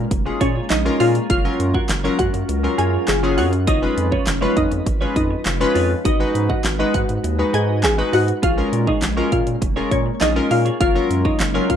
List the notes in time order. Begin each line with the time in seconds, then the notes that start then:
Already playing: G#3 A#3 C#4
0.11 F1, muted clean electric guitar stroke, kick, closed hi-hat
0.26 G#3 C#4 F4 G#4, muted clean electric guitar stroke
0.40 A#2 C#4 F4 G#4 C#5, kick, closed hi-hat
0.55 F4 G#4 C#5
0.70 A#1 D#4 D#5, snare, clap, closed hi-hat
0.85 G#3 C#4 F4 A#4, muted clean electric guitar stroke
1.00 A#2 F4 G#4 C#5 F5, open hi-hat
1.15 F4 G#4 C#5, closed hi-hat
1.29 F#1 F#3 F4 A#4 C#5 F5, kick, closed hi-hat
1.45 F#3 C#4 F4 A#4
1.59 F#2, muted clean electric guitar stroke, closed hi-hat
1.74 F4 F#4 A#4 C#5 F#5, kick
1.89 F#1, muted clean electric guitar stroke, snare, clap, closed hi-hat
2.04 F#3 C#4 F4 A#4 C#5
2.19 F#2 F#4 F#5, muted clean electric guitar stroke, kick, closed hi-hat
2.34 F#2, muted clean electric guitar stroke, closed hi-hat
2.48 C#2, muted clean electric guitar stroke, closed hi-hat
2.63 F#3 C#4 F4 A#4, muted clean electric guitar stroke
2.78 F#2 F4 G#4 A#4 C#5 G#5, closed hi-hat
2.93 F4 A#4 C#5
3.08 F#1 G#4 G#5, snare, clap, closed hi-hat
3.23 F#3 C#4 F4 G#4, muted clean electric guitar stroke
3.37 F#2 F4 F#4 A#4 C#5 F#5, open hi-hat
3.52 muted clean electric guitar stroke, closed hi-hat
3.67 F1 F3 D#4 F4 B4 C#5 D#5, kick, closed hi-hat
3.82 G#3 C#4 F4 B4
3.97 F2, muted clean electric guitar stroke, closed hi-hat
4.12 C#4 F4 B4 C#5, kick
4.27 F1, muted clean electric guitar stroke, snare, clap, closed hi-hat
4.41 G#3 C#4 F4 B4 C#5
4.57 F2 D#4 D#5, kick, closed hi-hat
4.71 F2, muted clean electric guitar stroke, closed hi-hat
4.86 G#1, muted clean electric guitar stroke, kick, closed hi-hat
5.01 G#3 C#4 F4 B4 C#5
5.16 F2 D#4 D#5, muted clean electric guitar stroke, kick, closed hi-hat
5.31 muted clean electric guitar stroke
5.46 F1, snare, clap, closed hi-hat
5.60 G#3 C#4 F4 B4, muted clean electric guitar stroke
5.75 F2 F4 B4 C#5, open hi-hat
5.90 muted clean electric guitar stroke
6.05 G#1 G#3 D#4 F#4 B4 D#5, kick, closed hi-hat
6.20 G#3 D#4 F#4 B4
6.34 G#2, muted clean electric guitar stroke, closed hi-hat
6.49 F#4 B4 D#5 F#5, kick
6.64 G#1, muted clean electric guitar stroke, snare, clap, closed hi-hat
6.79 G#3 D#4 F#4 B4 D#5
6.94 G#2 F#4 F#5, muted clean electric guitar stroke, kick, closed hi-hat
7.09 G#2, muted clean electric guitar stroke, closed hi-hat
7.24 D#2, muted clean electric guitar stroke, closed hi-hat
7.39 G#3 D#4 F#4 B4, muted clean electric guitar stroke
7.53 G#2 F#4 G#4 B4 D#5 G#5, closed hi-hat
7.68 F#4 B4 D#5
7.83 G#1 G#4 G#5, snare, clap, closed hi-hat
7.98 G#3 D#4 F#4 B4, muted clean electric guitar stroke
8.13 G#2 F#4 B4 D#5 F#5, open hi-hat
8.28 muted clean electric guitar stroke, closed hi-hat
8.42 A#1 A#3 C#4 F4 G#4 C#5 F5, kick, closed hi-hat
8.57 G#3 C#4 F4 A#4
8.72 A#2, closed hi-hat
8.87 D#4 F4 G#4 C#5 D#5, kick
9.02 A#1, snare, clap, closed hi-hat
9.17 G#3 C#4 F4 G#4 A#4 C#5
9.32 A#2 F4 F5, kick, closed hi-hat
9.47 A#2, muted clean electric guitar stroke, closed hi-hat
9.61 F1, muted clean electric guitar stroke, kick, closed hi-hat
9.76 G#3 C#4 F4 G#4 A#4 C#5
9.91 A#2 C#4 C#5, muted clean electric guitar stroke, kick, closed hi-hat
10.06 muted clean electric guitar stroke
10.21 A#1 D#4 F4 G#4 C#5 D#5, snare, clap, closed hi-hat
10.36 G#3 C#4 F4 A#4, muted clean electric guitar stroke
10.51 A#2 F4 F5, muted clean electric guitar stroke, open hi-hat
10.65 F4 G#4 C#5, closed hi-hat
10.80 F#1 F#3 F4 A#4 C#5 F5, kick, closed hi-hat
10.95 F#3 C#4 F4 A#4
11.10 F#2, closed hi-hat
11.25 D#4 F4 A#4 C#5 D#5, kick
11.40 F#1, muted clean electric guitar stroke, snare, clap, closed hi-hat
11.54 F#3 C#4 F4 A#4 C#5
11.69 F#2 F4 F5, muted clean electric guitar stroke, kick, closed hi-hat